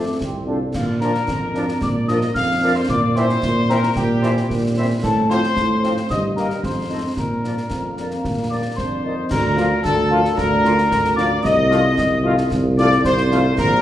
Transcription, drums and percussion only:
0.21 concert bass drum medium
0.21 snare medium
0.74 concert bass drum medium
0.74 snare medium
0.74 crash soft
1.01 snare medium
1.15 snare soft
1.28 concert bass drum medium
1.28 snare medium
1.55 snare soft
1.69 snare medium
1.81 concert bass drum medium
1.81 snare medium
2.08 snare medium
2.21 snare soft
2.35 concert bass drum medium
2.35 snare medium
2.89 concert bass drum medium
2.89 snare medium
3.16 snare medium
3.29 snare soft
3.43 concert bass drum medium
3.43 snare medium
3.70 snare medium
3.83 snare medium
3.96 concert bass drum medium
3.96 snare medium
4.23 snare medium
4.37 snare soft
4.50 concert bass drum medium
4.50 snare medium
5.04 concert bass drum medium
5.04 snare medium
5.04 crash soft
5.30 snare medium
5.44 snare soft
5.57 concert bass drum medium
5.57 snare medium
5.84 snare medium
5.97 snare medium
6.10 concert bass drum medium
6.10 snare medium
6.37 snare medium
6.50 snare soft
6.63 concert bass drum medium
6.63 snare medium
7.17 concert bass drum medium
7.17 snare medium
7.44 snare medium
7.57 snare soft
7.70 concert bass drum medium
7.70 snare medium
7.97 snare soft
8.11 snare soft
8.25 concert bass drum medium
8.25 snare medium
8.78 concert bass drum medium
8.78 snare medium
9.31 concert bass drum medium
9.31 snare medium
9.31 crash soft
9.58 snare medium
9.85 concert bass drum medium
9.85 snare medium
10.25 snare medium
10.38 concert bass drum medium
10.38 snare medium
10.65 snare medium
10.78 snare medium
10.91 concert bass drum medium
10.91 snare medium
11.05 snare medium
11.18 snare medium
11.45 concert bass drum medium
11.45 snare medium
11.72 snare medium
11.98 concert bass drum medium
11.98 snare medium
12.38 snare medium
12.51 concert bass drum medium
12.51 snare medium
12.78 snare medium
12.91 snare soft
13.05 concert bass drum medium
13.05 snare medium
13.18 snare medium
13.32 snare medium
13.58 concert bass drum medium
13.58 snare medium
13.58 crash soft

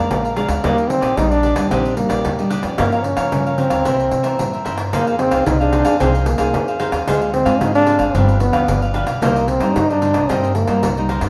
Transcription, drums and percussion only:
0.11 pandeiro medium
0.25 pandeiro soft
0.36 pandeiro medium
0.48 pandeiro medium
0.64 pandeiro medium
0.78 pandeiro soft
0.90 pandeiro medium
1.02 pandeiro medium
1.17 pandeiro medium
1.32 pandeiro soft
1.43 pandeiro soft
1.56 pandeiro medium
1.71 pandeiro medium
1.85 pandeiro soft
1.97 pandeiro medium
2.10 pandeiro medium
2.25 pandeiro medium
2.39 pandeiro soft
2.51 pandeiro medium
2.63 pandeiro medium
2.78 pandeiro medium
2.92 pandeiro soft
3.04 pandeiro soft
3.17 pandeiro medium
3.32 pandeiro medium
3.47 pandeiro soft
3.58 pandeiro medium
3.70 pandeiro medium
3.85 pandeiro medium
4.00 pandeiro soft
4.11 pandeiro medium
4.24 pandeiro medium
4.39 pandeiro medium
4.53 pandeiro soft
4.66 pandeiro medium
4.78 pandeiro medium
4.93 pandeiro medium
5.07 pandeiro soft
5.19 pandeiro medium
5.31 pandeiro medium
5.46 pandeiro medium
5.61 pandeiro soft
5.73 pandeiro medium
5.85 pandeiro medium
6.00 pandeiro medium
6.15 pandeiro soft
6.26 pandeiro medium
6.38 pandeiro medium
6.54 pandeiro medium
6.68 pandeiro soft
6.80 pandeiro medium
6.92 pandeiro medium
7.08 pandeiro medium
7.22 pandeiro soft
7.34 pandeiro medium
7.46 pandeiro medium
7.61 pandeiro medium
7.75 pandeiro soft
7.87 pandeiro medium
7.99 pandeiro medium
8.15 pandeiro medium
8.29 pandeiro soft
8.40 pandeiro medium
8.53 pandeiro medium
8.68 pandeiro medium
8.82 pandeiro soft
8.94 pandeiro medium
9.07 pandeiro medium
9.22 pandeiro medium
9.36 pandeiro soft
9.48 pandeiro medium
9.60 pandeiro medium
9.76 pandeiro medium
9.90 pandeiro soft
10.02 pandeiro medium
10.14 pandeiro medium
10.30 pandeiro medium
10.43 pandeiro soft
10.55 pandeiro medium
10.68 pandeiro medium
10.83 pandeiro medium
10.97 pandeiro soft
11.09 pandeiro medium
11.21 pandeiro medium

